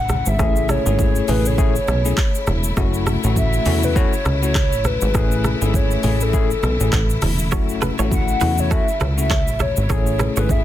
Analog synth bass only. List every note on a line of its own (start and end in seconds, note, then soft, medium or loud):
0.00 0.23 A1 medium
0.27 0.37 G#1 medium
0.39 0.80 A1 loud
0.86 1.22 G#1 loud
1.29 1.79 A1 loud
1.88 2.13 B1 loud
2.47 2.73 E1 medium
2.77 3.17 F#1 loud
3.24 3.60 A1 loud
3.66 4.06 E2 medium
4.25 4.74 C#2 loud
4.72 4.98 A1 medium
5.02 5.13 G#1 loud
5.15 5.55 A1 loud
5.61 5.98 G#1 medium
6.04 6.55 A1 medium
6.63 6.78 B1 loud
6.80 6.91 A1 medium
6.93 7.18 A1 loud
7.22 7.54 E1 medium
7.52 7.92 F#1 loud
7.99 8.35 A1 medium
8.41 8.82 E2 medium
9.01 9.49 C#2 loud
9.48 9.73 A1 medium
9.77 9.88 G#1 medium
9.90 10.30 A1 loud
10.37 10.64 G#1 loud